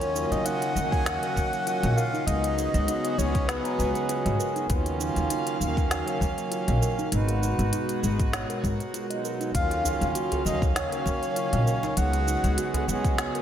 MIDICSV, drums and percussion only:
0, 0, Header, 1, 3, 480
1, 0, Start_track
1, 0, Key_signature, -6, "minor"
1, 0, Tempo, 606061
1, 1801, Time_signature, 4, 2, 24, 8
1, 10628, End_track
2, 0, Start_track
2, 0, Title_t, "Djembe"
2, 7689, Note_on_c, 9, 63, 80
2, 7768, Note_off_c, 9, 63, 0
2, 7805, Note_on_c, 9, 64, 78
2, 7885, Note_off_c, 9, 64, 0
2, 8169, Note_on_c, 9, 63, 69
2, 8175, Note_on_c, 9, 64, 84
2, 8248, Note_off_c, 9, 63, 0
2, 8254, Note_off_c, 9, 64, 0
2, 8275, Note_on_c, 9, 63, 66
2, 8286, Note_on_c, 9, 62, 47
2, 8354, Note_off_c, 9, 63, 0
2, 8365, Note_off_c, 9, 62, 0
2, 8413, Note_on_c, 9, 64, 78
2, 8492, Note_off_c, 9, 64, 0
2, 8652, Note_on_c, 9, 63, 37
2, 8731, Note_off_c, 9, 63, 0
2, 8756, Note_on_c, 9, 62, 55
2, 8835, Note_off_c, 9, 62, 0
2, 9246, Note_on_c, 9, 63, 37
2, 9325, Note_off_c, 9, 63, 0
2, 9371, Note_on_c, 9, 62, 68
2, 9450, Note_off_c, 9, 62, 0
2, 9609, Note_on_c, 9, 63, 81
2, 9688, Note_off_c, 9, 63, 0
2, 10092, Note_on_c, 9, 64, 98
2, 10096, Note_on_c, 9, 63, 73
2, 10171, Note_off_c, 9, 64, 0
2, 10175, Note_off_c, 9, 63, 0
2, 10202, Note_on_c, 9, 63, 62
2, 10204, Note_on_c, 9, 62, 45
2, 10281, Note_off_c, 9, 63, 0
2, 10284, Note_off_c, 9, 62, 0
2, 10628, End_track
3, 0, Start_track
3, 0, Title_t, "Drums"
3, 11, Note_on_c, 9, 42, 42
3, 15, Note_on_c, 9, 69, 22
3, 90, Note_off_c, 9, 42, 0
3, 95, Note_off_c, 9, 69, 0
3, 125, Note_on_c, 9, 69, 83
3, 204, Note_off_c, 9, 69, 0
3, 252, Note_on_c, 9, 42, 29
3, 256, Note_on_c, 9, 69, 33
3, 331, Note_off_c, 9, 42, 0
3, 336, Note_off_c, 9, 69, 0
3, 362, Note_on_c, 9, 42, 66
3, 366, Note_on_c, 9, 69, 46
3, 441, Note_off_c, 9, 42, 0
3, 445, Note_off_c, 9, 69, 0
3, 491, Note_on_c, 9, 42, 41
3, 496, Note_on_c, 9, 69, 21
3, 570, Note_off_c, 9, 42, 0
3, 575, Note_off_c, 9, 69, 0
3, 606, Note_on_c, 9, 69, 79
3, 685, Note_off_c, 9, 69, 0
3, 732, Note_on_c, 9, 36, 107
3, 737, Note_on_c, 9, 69, 33
3, 811, Note_off_c, 9, 36, 0
3, 816, Note_off_c, 9, 69, 0
3, 842, Note_on_c, 9, 38, 80
3, 842, Note_on_c, 9, 42, 68
3, 846, Note_on_c, 9, 69, 46
3, 921, Note_off_c, 9, 38, 0
3, 921, Note_off_c, 9, 42, 0
3, 925, Note_off_c, 9, 69, 0
3, 973, Note_on_c, 9, 42, 42
3, 977, Note_on_c, 9, 69, 23
3, 1052, Note_off_c, 9, 42, 0
3, 1056, Note_off_c, 9, 69, 0
3, 1082, Note_on_c, 9, 36, 62
3, 1085, Note_on_c, 9, 69, 80
3, 1161, Note_off_c, 9, 36, 0
3, 1165, Note_off_c, 9, 69, 0
3, 1212, Note_on_c, 9, 42, 31
3, 1216, Note_on_c, 9, 69, 33
3, 1291, Note_off_c, 9, 42, 0
3, 1295, Note_off_c, 9, 69, 0
3, 1322, Note_on_c, 9, 42, 60
3, 1326, Note_on_c, 9, 69, 43
3, 1401, Note_off_c, 9, 42, 0
3, 1406, Note_off_c, 9, 69, 0
3, 1453, Note_on_c, 9, 42, 47
3, 1457, Note_on_c, 9, 69, 24
3, 1532, Note_off_c, 9, 42, 0
3, 1536, Note_off_c, 9, 69, 0
3, 1566, Note_on_c, 9, 69, 72
3, 1646, Note_off_c, 9, 69, 0
3, 1698, Note_on_c, 9, 69, 33
3, 1777, Note_off_c, 9, 69, 0
3, 1802, Note_on_c, 9, 42, 70
3, 1807, Note_on_c, 9, 69, 45
3, 1881, Note_off_c, 9, 42, 0
3, 1886, Note_off_c, 9, 69, 0
3, 1933, Note_on_c, 9, 42, 46
3, 1937, Note_on_c, 9, 69, 21
3, 2012, Note_off_c, 9, 42, 0
3, 2016, Note_off_c, 9, 69, 0
3, 2046, Note_on_c, 9, 69, 80
3, 2125, Note_off_c, 9, 69, 0
3, 2172, Note_on_c, 9, 42, 31
3, 2176, Note_on_c, 9, 69, 33
3, 2251, Note_off_c, 9, 42, 0
3, 2255, Note_off_c, 9, 69, 0
3, 2282, Note_on_c, 9, 42, 66
3, 2287, Note_on_c, 9, 69, 44
3, 2362, Note_off_c, 9, 42, 0
3, 2366, Note_off_c, 9, 69, 0
3, 2412, Note_on_c, 9, 42, 43
3, 2417, Note_on_c, 9, 69, 22
3, 2491, Note_off_c, 9, 42, 0
3, 2496, Note_off_c, 9, 69, 0
3, 2527, Note_on_c, 9, 69, 78
3, 2606, Note_off_c, 9, 69, 0
3, 2652, Note_on_c, 9, 36, 108
3, 2652, Note_on_c, 9, 42, 30
3, 2656, Note_on_c, 9, 69, 30
3, 2731, Note_off_c, 9, 36, 0
3, 2731, Note_off_c, 9, 42, 0
3, 2735, Note_off_c, 9, 69, 0
3, 2762, Note_on_c, 9, 38, 82
3, 2762, Note_on_c, 9, 42, 71
3, 2767, Note_on_c, 9, 69, 46
3, 2841, Note_off_c, 9, 38, 0
3, 2841, Note_off_c, 9, 42, 0
3, 2846, Note_off_c, 9, 69, 0
3, 2892, Note_on_c, 9, 42, 43
3, 2896, Note_on_c, 9, 69, 22
3, 2971, Note_off_c, 9, 42, 0
3, 2975, Note_off_c, 9, 69, 0
3, 3006, Note_on_c, 9, 69, 75
3, 3085, Note_off_c, 9, 69, 0
3, 3131, Note_on_c, 9, 42, 31
3, 3135, Note_on_c, 9, 69, 33
3, 3210, Note_off_c, 9, 42, 0
3, 3214, Note_off_c, 9, 69, 0
3, 3241, Note_on_c, 9, 42, 62
3, 3245, Note_on_c, 9, 69, 42
3, 3320, Note_off_c, 9, 42, 0
3, 3324, Note_off_c, 9, 69, 0
3, 3372, Note_on_c, 9, 42, 45
3, 3377, Note_on_c, 9, 69, 23
3, 3452, Note_off_c, 9, 42, 0
3, 3456, Note_off_c, 9, 69, 0
3, 3485, Note_on_c, 9, 69, 71
3, 3564, Note_off_c, 9, 69, 0
3, 3611, Note_on_c, 9, 42, 29
3, 3616, Note_on_c, 9, 69, 31
3, 3691, Note_off_c, 9, 42, 0
3, 3695, Note_off_c, 9, 69, 0
3, 3720, Note_on_c, 9, 42, 75
3, 3721, Note_on_c, 9, 36, 120
3, 3724, Note_on_c, 9, 69, 43
3, 3799, Note_off_c, 9, 42, 0
3, 3800, Note_off_c, 9, 36, 0
3, 3803, Note_off_c, 9, 69, 0
3, 3849, Note_on_c, 9, 42, 44
3, 3854, Note_on_c, 9, 69, 20
3, 3929, Note_off_c, 9, 42, 0
3, 3933, Note_off_c, 9, 69, 0
3, 3963, Note_on_c, 9, 69, 75
3, 4043, Note_off_c, 9, 69, 0
3, 4089, Note_on_c, 9, 42, 33
3, 4094, Note_on_c, 9, 69, 32
3, 4168, Note_off_c, 9, 42, 0
3, 4173, Note_off_c, 9, 69, 0
3, 4200, Note_on_c, 9, 42, 71
3, 4204, Note_on_c, 9, 69, 40
3, 4279, Note_off_c, 9, 42, 0
3, 4284, Note_off_c, 9, 69, 0
3, 4330, Note_on_c, 9, 42, 47
3, 4334, Note_on_c, 9, 69, 22
3, 4409, Note_off_c, 9, 42, 0
3, 4413, Note_off_c, 9, 69, 0
3, 4445, Note_on_c, 9, 69, 74
3, 4524, Note_off_c, 9, 69, 0
3, 4571, Note_on_c, 9, 36, 104
3, 4576, Note_on_c, 9, 69, 32
3, 4650, Note_off_c, 9, 36, 0
3, 4655, Note_off_c, 9, 69, 0
3, 4681, Note_on_c, 9, 38, 77
3, 4681, Note_on_c, 9, 42, 74
3, 4685, Note_on_c, 9, 69, 43
3, 4760, Note_off_c, 9, 38, 0
3, 4760, Note_off_c, 9, 42, 0
3, 4765, Note_off_c, 9, 69, 0
3, 4812, Note_on_c, 9, 42, 49
3, 4816, Note_on_c, 9, 69, 21
3, 4891, Note_off_c, 9, 42, 0
3, 4895, Note_off_c, 9, 69, 0
3, 4920, Note_on_c, 9, 36, 55
3, 4925, Note_on_c, 9, 69, 74
3, 4999, Note_off_c, 9, 36, 0
3, 5004, Note_off_c, 9, 69, 0
3, 5052, Note_on_c, 9, 42, 33
3, 5056, Note_on_c, 9, 69, 33
3, 5131, Note_off_c, 9, 42, 0
3, 5135, Note_off_c, 9, 69, 0
3, 5161, Note_on_c, 9, 42, 65
3, 5165, Note_on_c, 9, 69, 41
3, 5240, Note_off_c, 9, 42, 0
3, 5244, Note_off_c, 9, 69, 0
3, 5290, Note_on_c, 9, 42, 45
3, 5295, Note_on_c, 9, 69, 22
3, 5370, Note_off_c, 9, 42, 0
3, 5374, Note_off_c, 9, 69, 0
3, 5404, Note_on_c, 9, 69, 75
3, 5483, Note_off_c, 9, 69, 0
3, 5534, Note_on_c, 9, 69, 32
3, 5613, Note_off_c, 9, 69, 0
3, 5640, Note_on_c, 9, 42, 73
3, 5644, Note_on_c, 9, 69, 46
3, 5719, Note_off_c, 9, 42, 0
3, 5723, Note_off_c, 9, 69, 0
3, 5770, Note_on_c, 9, 42, 42
3, 5774, Note_on_c, 9, 69, 21
3, 5849, Note_off_c, 9, 42, 0
3, 5853, Note_off_c, 9, 69, 0
3, 5884, Note_on_c, 9, 69, 80
3, 5963, Note_off_c, 9, 69, 0
3, 6011, Note_on_c, 9, 42, 32
3, 6016, Note_on_c, 9, 69, 33
3, 6091, Note_off_c, 9, 42, 0
3, 6095, Note_off_c, 9, 69, 0
3, 6120, Note_on_c, 9, 42, 71
3, 6125, Note_on_c, 9, 69, 44
3, 6199, Note_off_c, 9, 42, 0
3, 6204, Note_off_c, 9, 69, 0
3, 6250, Note_on_c, 9, 42, 45
3, 6254, Note_on_c, 9, 69, 21
3, 6329, Note_off_c, 9, 42, 0
3, 6333, Note_off_c, 9, 69, 0
3, 6364, Note_on_c, 9, 69, 75
3, 6443, Note_off_c, 9, 69, 0
3, 6490, Note_on_c, 9, 42, 32
3, 6491, Note_on_c, 9, 36, 106
3, 6494, Note_on_c, 9, 69, 33
3, 6569, Note_off_c, 9, 42, 0
3, 6570, Note_off_c, 9, 36, 0
3, 6574, Note_off_c, 9, 69, 0
3, 6601, Note_on_c, 9, 38, 84
3, 6601, Note_on_c, 9, 42, 77
3, 6605, Note_on_c, 9, 69, 47
3, 6680, Note_off_c, 9, 38, 0
3, 6680, Note_off_c, 9, 42, 0
3, 6684, Note_off_c, 9, 69, 0
3, 6731, Note_on_c, 9, 42, 46
3, 6736, Note_on_c, 9, 69, 22
3, 6810, Note_off_c, 9, 42, 0
3, 6815, Note_off_c, 9, 69, 0
3, 6841, Note_on_c, 9, 36, 56
3, 6845, Note_on_c, 9, 69, 70
3, 6920, Note_off_c, 9, 36, 0
3, 6925, Note_off_c, 9, 69, 0
3, 6972, Note_on_c, 9, 42, 34
3, 6977, Note_on_c, 9, 69, 33
3, 7051, Note_off_c, 9, 42, 0
3, 7056, Note_off_c, 9, 69, 0
3, 7082, Note_on_c, 9, 42, 70
3, 7086, Note_on_c, 9, 69, 42
3, 7161, Note_off_c, 9, 42, 0
3, 7165, Note_off_c, 9, 69, 0
3, 7212, Note_on_c, 9, 42, 47
3, 7216, Note_on_c, 9, 69, 23
3, 7291, Note_off_c, 9, 42, 0
3, 7295, Note_off_c, 9, 69, 0
3, 7324, Note_on_c, 9, 69, 73
3, 7404, Note_off_c, 9, 69, 0
3, 7451, Note_on_c, 9, 42, 30
3, 7455, Note_on_c, 9, 69, 31
3, 7530, Note_off_c, 9, 42, 0
3, 7534, Note_off_c, 9, 69, 0
3, 7560, Note_on_c, 9, 36, 126
3, 7561, Note_on_c, 9, 42, 76
3, 7566, Note_on_c, 9, 69, 46
3, 7640, Note_off_c, 9, 36, 0
3, 7641, Note_off_c, 9, 42, 0
3, 7645, Note_off_c, 9, 69, 0
3, 7692, Note_on_c, 9, 42, 42
3, 7696, Note_on_c, 9, 69, 21
3, 7771, Note_off_c, 9, 42, 0
3, 7776, Note_off_c, 9, 69, 0
3, 7805, Note_on_c, 9, 69, 87
3, 7884, Note_off_c, 9, 69, 0
3, 7932, Note_on_c, 9, 42, 31
3, 7936, Note_on_c, 9, 69, 34
3, 8011, Note_off_c, 9, 42, 0
3, 8015, Note_off_c, 9, 69, 0
3, 8041, Note_on_c, 9, 42, 66
3, 8045, Note_on_c, 9, 69, 48
3, 8120, Note_off_c, 9, 42, 0
3, 8124, Note_off_c, 9, 69, 0
3, 8172, Note_on_c, 9, 42, 46
3, 8177, Note_on_c, 9, 69, 21
3, 8252, Note_off_c, 9, 42, 0
3, 8256, Note_off_c, 9, 69, 0
3, 8286, Note_on_c, 9, 69, 79
3, 8365, Note_off_c, 9, 69, 0
3, 8411, Note_on_c, 9, 36, 112
3, 8416, Note_on_c, 9, 69, 34
3, 8490, Note_off_c, 9, 36, 0
3, 8495, Note_off_c, 9, 69, 0
3, 8522, Note_on_c, 9, 38, 89
3, 8522, Note_on_c, 9, 42, 79
3, 8526, Note_on_c, 9, 69, 47
3, 8601, Note_off_c, 9, 38, 0
3, 8601, Note_off_c, 9, 42, 0
3, 8606, Note_off_c, 9, 69, 0
3, 8652, Note_on_c, 9, 42, 47
3, 8656, Note_on_c, 9, 69, 23
3, 8731, Note_off_c, 9, 42, 0
3, 8735, Note_off_c, 9, 69, 0
3, 8760, Note_on_c, 9, 36, 59
3, 8765, Note_on_c, 9, 69, 73
3, 8840, Note_off_c, 9, 36, 0
3, 8844, Note_off_c, 9, 69, 0
3, 8891, Note_on_c, 9, 42, 31
3, 8895, Note_on_c, 9, 69, 35
3, 8970, Note_off_c, 9, 42, 0
3, 8975, Note_off_c, 9, 69, 0
3, 9000, Note_on_c, 9, 42, 69
3, 9004, Note_on_c, 9, 69, 43
3, 9079, Note_off_c, 9, 42, 0
3, 9083, Note_off_c, 9, 69, 0
3, 9131, Note_on_c, 9, 42, 49
3, 9135, Note_on_c, 9, 69, 23
3, 9210, Note_off_c, 9, 42, 0
3, 9214, Note_off_c, 9, 69, 0
3, 9245, Note_on_c, 9, 69, 70
3, 9324, Note_off_c, 9, 69, 0
3, 9375, Note_on_c, 9, 69, 33
3, 9454, Note_off_c, 9, 69, 0
3, 9480, Note_on_c, 9, 42, 70
3, 9484, Note_on_c, 9, 69, 49
3, 9559, Note_off_c, 9, 42, 0
3, 9563, Note_off_c, 9, 69, 0
3, 9611, Note_on_c, 9, 42, 43
3, 9615, Note_on_c, 9, 69, 24
3, 9690, Note_off_c, 9, 42, 0
3, 9694, Note_off_c, 9, 69, 0
3, 9724, Note_on_c, 9, 69, 83
3, 9804, Note_off_c, 9, 69, 0
3, 9852, Note_on_c, 9, 42, 31
3, 9856, Note_on_c, 9, 69, 34
3, 9931, Note_off_c, 9, 42, 0
3, 9935, Note_off_c, 9, 69, 0
3, 9962, Note_on_c, 9, 42, 72
3, 9966, Note_on_c, 9, 69, 46
3, 10041, Note_off_c, 9, 42, 0
3, 10045, Note_off_c, 9, 69, 0
3, 10093, Note_on_c, 9, 42, 45
3, 10098, Note_on_c, 9, 69, 21
3, 10173, Note_off_c, 9, 42, 0
3, 10177, Note_off_c, 9, 69, 0
3, 10207, Note_on_c, 9, 69, 79
3, 10286, Note_off_c, 9, 69, 0
3, 10331, Note_on_c, 9, 36, 115
3, 10332, Note_on_c, 9, 42, 29
3, 10336, Note_on_c, 9, 69, 35
3, 10410, Note_off_c, 9, 36, 0
3, 10411, Note_off_c, 9, 42, 0
3, 10415, Note_off_c, 9, 69, 0
3, 10442, Note_on_c, 9, 38, 91
3, 10442, Note_on_c, 9, 42, 73
3, 10446, Note_on_c, 9, 69, 49
3, 10521, Note_off_c, 9, 38, 0
3, 10521, Note_off_c, 9, 42, 0
3, 10525, Note_off_c, 9, 69, 0
3, 10573, Note_on_c, 9, 42, 47
3, 10578, Note_on_c, 9, 69, 24
3, 10628, Note_off_c, 9, 42, 0
3, 10628, Note_off_c, 9, 69, 0
3, 10628, End_track
0, 0, End_of_file